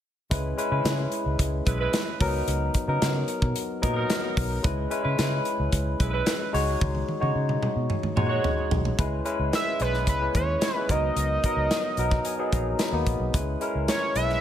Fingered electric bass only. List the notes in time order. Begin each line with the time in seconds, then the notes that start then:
0.31 C#2
0.71 C#3
0.85 C#3
1.26 C#2
1.39 C#2
1.66 B1
2.21 C#2
2.47 C#2
2.88 C#3
3.02 C#3
3.42 B2
3.83 A#2
4.37 B1
4.64 C#2
5.05 C#3
5.19 C#3
5.59 C#2
5.72 C#2
6.00 B1
6.54 C#2
6.81 C#2
7.22 C#3
7.35 C#3
7.76 B2
8.17 A#2
8.72 B1
8.99 C#2
9.39 C#2
9.80 B1
10.07 C#2
10.35 D#2
10.89 C#2
11.16 C#2
11.56 C#2
11.97 B1
12.52 A#1
12.92 D#2
13.07 A#1
13.20 B1
13.34 C#2
13.75 C#2
14.15 B1